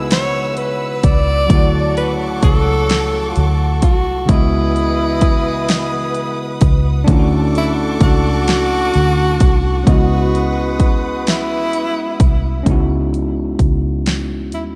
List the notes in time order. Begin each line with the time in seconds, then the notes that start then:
Already playing: C#2 B2 C#3 G#3 B3 D#4 E4 F#4 B4 F#5 E6
0.11 C#5, snare, closed hi-hat
0.57 B4, closed hi-hat
1.03 C#2 D5, kick, closed hi-hat
1.47 D2 C#3 F#3 A3 F#4 A4 C#6 D6, kick, closed hi-hat
1.53 E4 F#4
1.97 B4, closed hi-hat
2.43 C#2 A4, kick, closed hi-hat
2.89 snare, closed hi-hat
3.30 F4
3.36 D2 F#4, closed hi-hat
3.82 C2 F#4, kick, closed hi-hat
4.25 C#2 C#3 E3 G#3 B3 G#4 B4 D#5 D#6, kick, closed hi-hat
4.30 E4 F#4 D#5
4.76 closed hi-hat
5.21 kick, closed hi-hat
5.68 snare, closed hi-hat
6.14 closed hi-hat
6.61 C#2, kick, closed hi-hat
7.04 D2 F#3 A3 C#4 D4 A4 F#5 D6, kick, closed hi-hat
7.08 E4 F4 C#6
7.19 F#4
7.55 E4, closed hi-hat
8.00 C#2 F#4, kick, closed hi-hat
8.48 snare, closed hi-hat
8.94 D2, closed hi-hat
9.40 C2, kick, closed hi-hat
9.84 C#2 G#3 B3 C#4 F#4 B4 D#6, kick, closed hi-hat
9.88 E4 F#4 D#5
10.35 closed hi-hat
10.80 kick, closed hi-hat
11.27 E4, snare, closed hi-hat
11.73 closed hi-hat
12.20 C2, kick, closed hi-hat
12.63 C#2 G#3 B3 C#4, kick, closed hi-hat
12.68 D#4 E4 F#4
13.14 closed hi-hat
13.59 C#2, kick, closed hi-hat
14.06 snare, closed hi-hat
14.52 D#2 E4, closed hi-hat